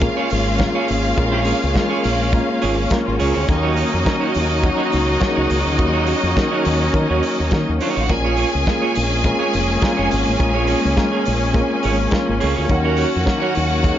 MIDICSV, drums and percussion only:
0, 0, Header, 1, 2, 480
1, 0, Start_track
1, 0, Key_signature, -5, "minor"
1, 0, Tempo, 575816
1, 979, Time_signature, 4, 2, 24, 8
1, 11657, End_track
2, 0, Start_track
2, 0, Title_t, "Drums"
2, 13, Note_on_c, 9, 42, 81
2, 14, Note_on_c, 9, 36, 114
2, 96, Note_off_c, 9, 42, 0
2, 97, Note_off_c, 9, 36, 0
2, 251, Note_on_c, 9, 46, 58
2, 334, Note_off_c, 9, 46, 0
2, 488, Note_on_c, 9, 42, 60
2, 499, Note_on_c, 9, 36, 105
2, 504, Note_on_c, 9, 38, 106
2, 571, Note_off_c, 9, 42, 0
2, 582, Note_off_c, 9, 36, 0
2, 588, Note_off_c, 9, 38, 0
2, 736, Note_on_c, 9, 46, 62
2, 819, Note_off_c, 9, 46, 0
2, 981, Note_on_c, 9, 36, 100
2, 982, Note_on_c, 9, 42, 64
2, 1065, Note_off_c, 9, 36, 0
2, 1066, Note_off_c, 9, 42, 0
2, 1206, Note_on_c, 9, 46, 51
2, 1290, Note_off_c, 9, 46, 0
2, 1464, Note_on_c, 9, 36, 93
2, 1470, Note_on_c, 9, 38, 102
2, 1471, Note_on_c, 9, 42, 60
2, 1547, Note_off_c, 9, 36, 0
2, 1554, Note_off_c, 9, 38, 0
2, 1555, Note_off_c, 9, 42, 0
2, 1700, Note_on_c, 9, 46, 72
2, 1783, Note_off_c, 9, 46, 0
2, 1942, Note_on_c, 9, 36, 117
2, 1943, Note_on_c, 9, 42, 76
2, 2025, Note_off_c, 9, 36, 0
2, 2026, Note_off_c, 9, 42, 0
2, 2183, Note_on_c, 9, 46, 59
2, 2266, Note_off_c, 9, 46, 0
2, 2420, Note_on_c, 9, 42, 66
2, 2426, Note_on_c, 9, 36, 107
2, 2437, Note_on_c, 9, 38, 100
2, 2503, Note_off_c, 9, 42, 0
2, 2510, Note_off_c, 9, 36, 0
2, 2520, Note_off_c, 9, 38, 0
2, 2665, Note_on_c, 9, 46, 63
2, 2748, Note_off_c, 9, 46, 0
2, 2907, Note_on_c, 9, 36, 98
2, 2908, Note_on_c, 9, 42, 74
2, 2990, Note_off_c, 9, 36, 0
2, 2991, Note_off_c, 9, 42, 0
2, 3138, Note_on_c, 9, 46, 52
2, 3221, Note_off_c, 9, 46, 0
2, 3387, Note_on_c, 9, 36, 103
2, 3393, Note_on_c, 9, 38, 100
2, 3394, Note_on_c, 9, 42, 57
2, 3471, Note_off_c, 9, 36, 0
2, 3476, Note_off_c, 9, 38, 0
2, 3477, Note_off_c, 9, 42, 0
2, 3622, Note_on_c, 9, 46, 66
2, 3705, Note_off_c, 9, 46, 0
2, 3864, Note_on_c, 9, 36, 113
2, 3865, Note_on_c, 9, 42, 74
2, 3948, Note_off_c, 9, 36, 0
2, 3948, Note_off_c, 9, 42, 0
2, 4102, Note_on_c, 9, 46, 57
2, 4185, Note_off_c, 9, 46, 0
2, 4340, Note_on_c, 9, 42, 57
2, 4348, Note_on_c, 9, 36, 110
2, 4357, Note_on_c, 9, 38, 106
2, 4424, Note_off_c, 9, 42, 0
2, 4431, Note_off_c, 9, 36, 0
2, 4440, Note_off_c, 9, 38, 0
2, 4585, Note_on_c, 9, 46, 67
2, 4669, Note_off_c, 9, 46, 0
2, 4825, Note_on_c, 9, 42, 69
2, 4827, Note_on_c, 9, 36, 109
2, 4909, Note_off_c, 9, 42, 0
2, 4910, Note_off_c, 9, 36, 0
2, 5057, Note_on_c, 9, 46, 54
2, 5140, Note_off_c, 9, 46, 0
2, 5309, Note_on_c, 9, 36, 106
2, 5315, Note_on_c, 9, 38, 98
2, 5316, Note_on_c, 9, 42, 56
2, 5392, Note_off_c, 9, 36, 0
2, 5398, Note_off_c, 9, 38, 0
2, 5399, Note_off_c, 9, 42, 0
2, 5544, Note_on_c, 9, 46, 63
2, 5627, Note_off_c, 9, 46, 0
2, 5785, Note_on_c, 9, 36, 103
2, 5785, Note_on_c, 9, 42, 68
2, 5868, Note_off_c, 9, 36, 0
2, 5868, Note_off_c, 9, 42, 0
2, 6026, Note_on_c, 9, 46, 52
2, 6109, Note_off_c, 9, 46, 0
2, 6260, Note_on_c, 9, 42, 59
2, 6269, Note_on_c, 9, 36, 105
2, 6277, Note_on_c, 9, 38, 110
2, 6343, Note_off_c, 9, 42, 0
2, 6352, Note_off_c, 9, 36, 0
2, 6360, Note_off_c, 9, 38, 0
2, 6507, Note_on_c, 9, 46, 59
2, 6591, Note_off_c, 9, 46, 0
2, 6748, Note_on_c, 9, 36, 96
2, 6748, Note_on_c, 9, 42, 72
2, 6831, Note_off_c, 9, 36, 0
2, 6831, Note_off_c, 9, 42, 0
2, 6977, Note_on_c, 9, 46, 51
2, 7060, Note_off_c, 9, 46, 0
2, 7229, Note_on_c, 9, 36, 106
2, 7234, Note_on_c, 9, 38, 91
2, 7235, Note_on_c, 9, 42, 58
2, 7312, Note_off_c, 9, 36, 0
2, 7317, Note_off_c, 9, 38, 0
2, 7318, Note_off_c, 9, 42, 0
2, 7463, Note_on_c, 9, 46, 67
2, 7546, Note_off_c, 9, 46, 0
2, 7704, Note_on_c, 9, 42, 83
2, 7705, Note_on_c, 9, 36, 104
2, 7787, Note_off_c, 9, 42, 0
2, 7789, Note_off_c, 9, 36, 0
2, 7946, Note_on_c, 9, 46, 58
2, 8029, Note_off_c, 9, 46, 0
2, 8184, Note_on_c, 9, 42, 67
2, 8190, Note_on_c, 9, 36, 107
2, 8201, Note_on_c, 9, 38, 106
2, 8268, Note_off_c, 9, 42, 0
2, 8273, Note_off_c, 9, 36, 0
2, 8284, Note_off_c, 9, 38, 0
2, 8430, Note_on_c, 9, 46, 68
2, 8513, Note_off_c, 9, 46, 0
2, 8669, Note_on_c, 9, 36, 108
2, 8672, Note_on_c, 9, 42, 70
2, 8753, Note_off_c, 9, 36, 0
2, 8755, Note_off_c, 9, 42, 0
2, 8897, Note_on_c, 9, 46, 55
2, 8980, Note_off_c, 9, 46, 0
2, 9147, Note_on_c, 9, 36, 109
2, 9150, Note_on_c, 9, 38, 99
2, 9151, Note_on_c, 9, 42, 57
2, 9231, Note_off_c, 9, 36, 0
2, 9233, Note_off_c, 9, 38, 0
2, 9234, Note_off_c, 9, 42, 0
2, 9382, Note_on_c, 9, 46, 61
2, 9466, Note_off_c, 9, 46, 0
2, 9623, Note_on_c, 9, 36, 127
2, 9625, Note_on_c, 9, 42, 77
2, 9707, Note_off_c, 9, 36, 0
2, 9708, Note_off_c, 9, 42, 0
2, 9861, Note_on_c, 9, 46, 54
2, 9945, Note_off_c, 9, 46, 0
2, 10098, Note_on_c, 9, 42, 62
2, 10105, Note_on_c, 9, 36, 108
2, 10115, Note_on_c, 9, 38, 103
2, 10181, Note_off_c, 9, 42, 0
2, 10188, Note_off_c, 9, 36, 0
2, 10198, Note_off_c, 9, 38, 0
2, 10341, Note_on_c, 9, 46, 63
2, 10424, Note_off_c, 9, 46, 0
2, 10582, Note_on_c, 9, 42, 67
2, 10583, Note_on_c, 9, 36, 102
2, 10666, Note_off_c, 9, 36, 0
2, 10666, Note_off_c, 9, 42, 0
2, 10809, Note_on_c, 9, 46, 54
2, 10893, Note_off_c, 9, 46, 0
2, 11062, Note_on_c, 9, 36, 109
2, 11065, Note_on_c, 9, 38, 101
2, 11146, Note_off_c, 9, 36, 0
2, 11149, Note_off_c, 9, 38, 0
2, 11295, Note_on_c, 9, 46, 64
2, 11379, Note_off_c, 9, 46, 0
2, 11539, Note_on_c, 9, 36, 119
2, 11541, Note_on_c, 9, 42, 77
2, 11622, Note_off_c, 9, 36, 0
2, 11624, Note_off_c, 9, 42, 0
2, 11657, End_track
0, 0, End_of_file